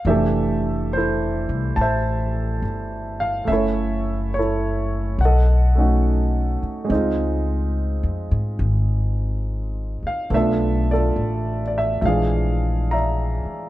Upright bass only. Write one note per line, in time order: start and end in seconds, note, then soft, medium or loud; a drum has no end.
0.05 1.45 F1 medium
1.49 1.75 C2 medium
1.77 2.59 A1 medium
2.62 3.44 G1 soft
3.47 5.15 F#1 medium
5.19 6.58 B1 medium
6.62 muted upright bass stroke soft
6.90 8.00 C#2 medium
8.03 8.30 F2 soft
8.31 8.58 G#2 medium
8.59 9.99 G#1 medium
10.02 muted upright bass stroke soft
10.30 11.12 B1 medium
11.16 11.98 A1 medium
12.02 13.42 A#1 medium
13.45 muted upright bass stroke soft